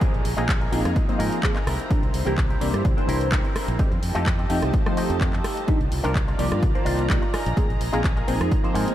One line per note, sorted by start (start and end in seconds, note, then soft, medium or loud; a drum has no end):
0.00 0.13 F3 medium
0.00 0.13 A#3 medium
0.00 0.13 C4 medium
0.00 0.24 D#4 medium
0.00 0.13 D#4 medium
0.00 0.25 F4 medium
0.00 0.25 G#4 medium
0.00 1.65 G#4 medium
0.00 0.13 G#4 medium
0.00 0.25 A#4 loud
0.00 3.76 A#5 medium
0.00 kick loud
0.00 closed hi-hat medium
0.00 downlifter medium
0.14 0.22 A#1 loud
0.14 closed hi-hat soft
0.25 0.34 A#1 medium
0.25 open hi-hat loud
0.37 0.67 A#1 medium
0.37 0.44 F3 medium
0.37 0.44 A#3 medium
0.37 0.44 C4 medium
0.37 0.48 D#4 loud
0.37 0.44 D#4 medium
0.37 0.48 F4 loud
0.37 0.49 G#4 loud
0.37 0.44 G#4 medium
0.37 0.49 A#4 loud
0.37 closed hi-hat medium
0.49 kick loud
0.49 clap loud
0.49 closed hi-hat medium
0.60 0.78 D#4 medium
0.60 0.78 F4 medium
0.60 0.79 G#4 medium
0.60 0.79 A#4 loud
0.60 closed hi-hat soft
0.72 0.81 A#1 medium
0.72 1.05 F3 medium
0.72 1.05 A#3 medium
0.72 1.05 C4 medium
0.72 1.06 D#4 medium
0.72 1.06 G#4 medium
0.72 open hi-hat loud
0.85 0.93 F2 medium
0.85 cross-stick medium
0.85 closed hi-hat medium
0.95 muted clean electric guitar stroke soft
0.95 kick loud
0.95 closed hi-hat medium
1.08 1.40 F3 loud
1.08 1.40 A#3 medium
1.08 1.41 C4 medium
1.08 1.41 D#4 medium
1.08 1.41 C5 loud
1.08 muted fingered electric bass stroke soft
1.08 closed hi-hat soft
1.19 1.28 G#2 medium
1.19 1.37 D#4 loud
1.19 1.37 F4 loud
1.19 1.38 G#4 loud
1.19 1.38 A#4 loud
1.19 open hi-hat loud
1.32 closed hi-hat medium
1.43 1.55 F3 medium
1.43 1.55 A#3 medium
1.43 1.55 C4 medium
1.43 1.55 D#4 medium
1.43 1.55 G#4 loud
1.43 kick loud
1.43 clap loud
1.43 closed hi-hat medium
1.55 1.67 D#4 medium
1.55 1.67 F4 medium
1.55 1.67 G#4 medium
1.55 1.66 A#4 medium
1.55 clap soft
1.55 closed hi-hat soft
1.66 1.76 C2 loud
1.66 2.14 C4 medium
1.66 2.14 E4 medium
1.66 3.78 E4 medium
1.66 2.14 G4 medium
1.66 2.14 A#4 loud
1.66 3.78 C5 medium
1.66 cross-stick medium
1.66 open hi-hat loud
1.80 closed hi-hat medium
1.90 2.02 E3 medium
1.90 2.02 A#3 medium
1.90 2.02 C4 medium
1.90 2.02 D4 medium
1.90 2.02 G4 medium
1.90 muted fingered electric bass stroke soft
1.90 kick loud
1.90 closed hi-hat medium
2.03 2.11 C2 loud
2.03 closed hi-hat soft
2.14 2.23 C2 medium
2.14 open hi-hat loud
2.26 2.56 C2 medium
2.26 2.33 E3 medium
2.26 2.33 A#3 medium
2.26 2.37 C4 loud
2.26 2.33 C4 medium
2.26 2.33 D4 medium
2.26 2.37 E4 loud
2.26 2.38 G4 loud
2.26 2.33 G4 medium
2.26 2.38 A#4 loud
2.26 closed hi-hat medium
2.38 kick loud
2.38 clap loud
2.38 closed hi-hat medium
2.49 2.67 C4 medium
2.49 2.67 E4 medium
2.49 2.67 G4 medium
2.49 2.68 A#4 loud
2.49 closed hi-hat soft
2.60 2.70 C2 medium
2.60 2.94 E3 medium
2.60 2.94 A#3 medium
2.60 2.94 C4 medium
2.60 2.94 D4 medium
2.60 2.94 G4 medium
2.60 open hi-hat loud
2.74 2.82 G2 medium
2.74 cross-stick medium
2.74 closed hi-hat medium
2.84 2.94 C2 medium
2.84 muted clean electric guitar stroke soft
2.84 kick loud
2.84 closed hi-hat medium
2.97 3.29 E3 loud
2.97 3.29 A#3 medium
2.97 3.29 C4 loud
2.97 3.29 D4 loud
2.97 3.29 C5 loud
2.97 closed hi-hat soft
3.08 3.39 C2 loud
3.08 3.26 C4 loud
3.08 3.26 E4 loud
3.08 3.27 G4 loud
3.08 3.27 A#4 loud
3.08 open hi-hat loud
3.21 closed hi-hat medium
3.31 3.43 E3 medium
3.31 3.43 A#3 medium
3.31 3.44 C4 medium
3.31 3.44 D4 medium
3.31 3.44 G4 loud
3.31 kick loud
3.31 clap loud
3.31 closed hi-hat medium
3.44 3.79 C4 medium
3.44 3.79 E4 medium
3.44 3.79 G4 medium
3.44 3.80 A#4 medium
3.44 closed hi-hat soft
3.56 muted fingered electric bass stroke soft
3.56 cross-stick medium
3.56 open hi-hat loud
3.68 3.76 A#1 loud
3.68 closed hi-hat medium
3.79 3.91 F3 medium
3.79 3.91 A3 medium
3.79 3.91 C4 medium
3.79 3.91 D#4 medium
3.79 5.66 G4 medium
3.79 3.91 G4 medium
3.79 5.66 D#5 medium
3.79 5.66 A5 medium
3.79 kick loud
3.79 closed hi-hat medium
3.92 4.00 F2 loud
3.92 closed hi-hat soft
4.03 4.12 F2 medium
4.03 open hi-hat loud
4.15 4.45 F2 medium
4.15 4.21 F3 medium
4.15 4.22 A3 medium
4.15 4.22 C4 medium
4.15 4.26 D#4 loud
4.15 4.22 D#4 medium
4.15 4.26 F4 loud
4.15 4.22 G4 medium
4.15 4.27 G4 loud
4.15 4.27 A4 loud
4.15 closed hi-hat soft
4.26 kick loud
4.26 clap loud
4.26 closed hi-hat soft
4.38 4.56 D#4 medium
4.38 4.56 F4 medium
4.38 4.57 G4 medium
4.38 4.57 A4 loud
4.38 closed hi-hat soft
4.49 4.59 F2 medium
4.49 4.83 F3 medium
4.49 4.83 A3 medium
4.49 4.83 C4 medium
4.49 4.83 D#4 medium
4.49 4.83 G4 loud
4.49 open hi-hat loud
4.62 4.71 C2 medium
4.62 cross-stick medium
4.62 closed hi-hat soft
4.73 muted clean electric guitar stroke soft
4.73 kick loud
4.73 closed hi-hat soft
4.86 5.18 F3 loud
4.86 5.18 A3 medium
4.86 5.18 C4 medium
4.86 5.18 D#4 loud
4.86 5.19 C5 loud
4.86 cross-stick medium
4.86 closed hi-hat soft
4.97 5.15 D#4 loud
4.97 5.15 F4 loud
4.97 5.16 G4 loud
4.97 5.16 A4 loud
4.97 open hi-hat loud
5.10 5.40 F2 medium
5.10 closed hi-hat medium
5.20 5.32 F3 medium
5.20 5.32 A3 medium
5.20 5.33 C4 medium
5.20 5.33 D#4 medium
5.20 5.33 G4 loud
5.20 kick loud
5.20 clap loud
5.20 closed hi-hat soft
5.33 5.68 D#4 medium
5.33 5.68 F4 medium
5.33 5.68 G4 medium
5.33 5.69 A4 medium
5.33 clap soft
5.33 closed hi-hat soft
5.44 cross-stick medium
5.44 open hi-hat loud
5.57 closed hi-hat soft
5.67 5.79 F3 medium
5.67 5.80 A#3 medium
5.67 5.80 D4 medium
5.67 5.80 D#4 medium
5.67 7.32 F4 medium
5.67 5.80 G4 medium
5.67 7.32 D5 medium
5.67 8.95 A#5 medium
5.67 muted fingered electric bass stroke soft
5.67 kick loud
5.67 closed hi-hat medium
5.81 5.89 C2 medium
5.81 closed hi-hat soft
5.92 6.01 C2 medium
5.92 open hi-hat loud
6.04 6.34 C2 medium
6.04 6.10 F3 medium
6.04 6.10 A#3 medium
6.04 6.15 D4 loud
6.04 6.11 D4 medium
6.04 6.11 D#4 medium
6.04 6.15 D#4 loud
6.04 6.16 F4 loud
6.04 6.11 G4 medium
6.04 6.16 A#4 loud
6.04 closed hi-hat soft
6.15 kick loud
6.15 clap loud
6.15 closed hi-hat soft
6.27 6.45 D4 medium
6.27 6.45 D#4 medium
6.27 6.45 F4 medium
6.27 6.46 A#4 loud
6.27 closed hi-hat soft
6.38 6.48 C2 medium
6.38 6.72 D#3 medium
6.38 6.72 F3 medium
6.38 6.72 A#3 medium
6.38 6.72 G4 loud
6.38 6.72 D5 medium
6.38 open hi-hat loud
6.52 6.60 G2 medium
6.52 cross-stick medium
6.52 closed hi-hat soft
6.62 6.72 C2 medium
6.62 muted clean electric guitar stroke soft
6.62 kick loud
6.62 closed hi-hat medium
6.74 7.07 D#3 medium
6.74 7.07 F3 loud
6.74 7.07 A#3 loud
6.74 7.07 C5 loud
6.74 7.07 D5 loud
6.74 closed hi-hat soft
6.85 7.17 C2 medium
6.85 7.04 D4 loud
6.85 7.04 D#4 loud
6.85 7.04 F4 loud
6.85 7.05 A#4 loud
6.85 open hi-hat loud
6.99 closed hi-hat soft
7.09 7.21 F3 medium
7.09 7.21 A#3 medium
7.09 7.21 D4 medium
7.09 7.21 D#4 medium
7.09 7.22 G4 loud
7.09 kick loud
7.09 clap loud
7.09 closed hi-hat medium
7.22 7.32 D4 medium
7.22 7.31 D#4 medium
7.22 7.32 F4 medium
7.22 7.33 A#4 loud
7.22 closed hi-hat soft
7.33 7.80 D#4 medium
7.33 7.81 F4 medium
7.33 8.95 G#4 medium
7.33 7.81 G#4 medium
7.33 7.81 A#4 loud
7.33 muted fingered electric bass stroke soft
7.33 cross-stick medium
7.33 open hi-hat loud
7.46 7.54 A#1 medium
7.46 closed hi-hat soft
7.56 7.68 F3 medium
7.56 7.69 A#3 medium
7.56 7.69 C4 medium
7.56 7.69 D#4 medium
7.56 7.69 G#4 medium
7.56 kick loud
7.56 closed hi-hat medium
7.70 7.78 A#1 medium
7.70 closed hi-hat soft
7.81 7.90 A#1 medium
7.81 open hi-hat loud
7.93 8.23 A#1 medium
7.93 7.99 F3 medium
7.93 8.00 A#3 medium
7.93 8.00 C4 medium
7.93 8.04 D#4 loud
7.93 8.00 D#4 medium
7.93 8.04 F4 loud
7.93 8.00 G#4 medium
7.93 8.05 G#4 loud
7.93 8.05 A#4 loud
7.93 closed hi-hat medium
8.04 kick loud
8.04 clap loud
8.04 closed hi-hat medium
8.16 8.34 D#4 medium
8.16 8.34 F4 medium
8.16 8.34 G#4 medium
8.16 8.35 A#4 loud
8.16 closed hi-hat soft
8.27 8.37 A#1 medium
8.27 8.61 F3 medium
8.27 8.61 A#3 medium
8.27 8.61 C4 medium
8.27 8.61 D#4 medium
8.27 8.61 G#4 medium
8.27 open hi-hat loud
8.41 8.49 F2 medium
8.41 cross-stick medium
8.41 closed hi-hat medium
8.51 muted clean electric guitar stroke soft
8.51 kick loud
8.51 closed hi-hat medium
8.63 8.95 F3 loud
8.63 8.95 A#3 medium
8.63 8.95 C4 medium
8.63 8.95 D#4 loud
8.63 8.95 C5 loud
8.63 muted fingered electric bass stroke soft
8.63 closed hi-hat soft
8.74 8.84 G#2 medium
8.74 8.93 D#4 loud
8.74 8.93 F4 loud
8.74 8.93 G#4 loud
8.74 8.94 A#4 loud
8.74 open hi-hat loud
8.88 closed hi-hat medium